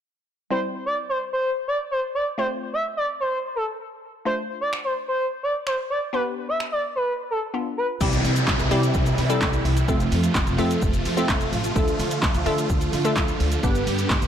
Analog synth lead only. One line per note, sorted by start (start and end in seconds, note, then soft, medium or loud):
0.51 0.60 C5 medium
0.86 0.95 D5 medium
1.09 1.18 C5 medium
1.33 1.50 C5 medium
1.68 1.77 D5 medium
1.91 2.00 C5 medium
2.15 2.24 D5 medium
2.38 2.47 C5 medium
2.73 2.82 E5 medium
2.97 3.06 D5 medium
3.20 3.38 C5 medium
3.56 3.64 A4 medium
4.26 4.35 C5 loud
4.61 4.70 D5 medium
4.85 4.93 C5 medium
5.08 5.26 C5 medium
5.43 5.52 D5 medium
5.67 5.75 C5 medium
5.90 5.99 D5 medium
6.14 6.22 B4 loud
6.49 6.57 E5 medium
6.72 6.81 D5 medium
6.96 7.13 B4 medium
7.31 7.39 A4 medium
7.78 7.86 B4 medium